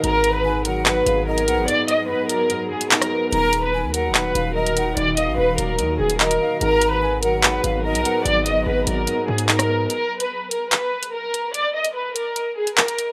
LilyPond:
<<
  \new Staff \with { instrumentName = "Flute" } { \time 4/4 \key aes \dorian \tempo 4 = 146 bes''4 aes''8 ges''4 f''8 ees''8 ges''8 | r8 ees''4. r2 | bes''4 aes''8 ges''4 f''8 ees''8 ges''8 | r8 f''4. r4 ees''8 f''8 |
bes''4 aes''8 ges''4 f''8 ees''8 ges''8 | r8 ees''4. r2 | r1 | r1 | }
  \new Staff \with { instrumentName = "Violin section" } { \time 4/4 \key aes \dorian bes'8. ces''8. bes'8 ces''4 bes'4 | d''8 ees''8 ces''8 bes'4 aes'8 bes'4 | bes'8. ces''8. bes'8 ces''4 bes'4 | d''8 ees''8 ces''8 bes'4 aes'8 bes'4 |
bes'8. ces''8. bes'8 ces''4 bes'4 | d''8 ees''8 ces''8 bes'4 aes'8 bes'4 | bes'8. ces''8. bes'8 ces''4 bes'4 | d''8 ees''8 ces''8 bes'4 aes'8 bes'4 | }
  \new Staff \with { instrumentName = "Ambient pad" } { \time 4/4 \key aes \dorian <ges ces' aes'>1~ | <ges ces' aes'>1 | <bes, ees ges'>1~ | <bes, ees ges'>1 |
<ges ces' aes'>1~ | <ges ces' aes'>1 | r1 | r1 | }
  \new Staff \with { instrumentName = "Grand piano" } { \clef bass \time 4/4 \key aes \dorian aes,4 aes,8 ges8 aes,8 aes,8 ees'8 ces'8 | aes,4 aes,8 ges8 aes,8 aes,8 ees'8 ces'8 | ees4 ees8 ges8 ees8 ees8 ees''8 ees'8 | ees4 ees8 ges8 ees8 ees8 ees''8 ees'8 |
aes,4 aes,8 ges8 aes,8 aes,8 ees'8 ces'8 | aes,4 aes,8 ges8 aes,8 aes,8 ees'8 ces'8 | r1 | r1 | }
  \new Staff \with { instrumentName = "808-style bass" } { \clef bass \time 4/4 \key aes \dorian aes,,2~ aes,,8 aes,,4 ces,16 aes,,16 | r1 | ees,,4~ ees,,16 ees,8~ ees,32 ees,,8~ ees,,32 ees,,4. | ees,,8. bes,,16 ees,,8 ees,,8 ees,8 ees,,4 r8 |
aes,,2~ aes,,8 aes,,8. ces,16 r8 | aes,,8 ges,,16 aes,,16 aes,,8 aes,,8 r8 aes,4. | r1 | r1 | }
  \new DrumStaff \with { instrumentName = "Drums" } \drummode { \time 4/4 hh8 hh8 r8 hh8 hc8 hh8 r16 hh16 hh8 | hh8 hh8 r8 hh8 hh8. hh16 hc16 <hh ss>8. | hh8 hh8 r8 hh8 hc8 hh8 r16 hh16 hh8 | hh8 hh8 r8 hh8 hh8. hh16 hc16 hh8. |
hh8 hh8 r8 hh8 hc8 hh8 r16 hh16 hh8 | hh8 hh8 r8 hh8 hh8. hh16 hc16 <hh ss>8. | hh8. hh16 r8 hh8 <hc hh>8. hh16 r8 hh8 | hh8. hh16 r8 hh8 hh8. hh16 hc16 hh16 hh8 | }
>>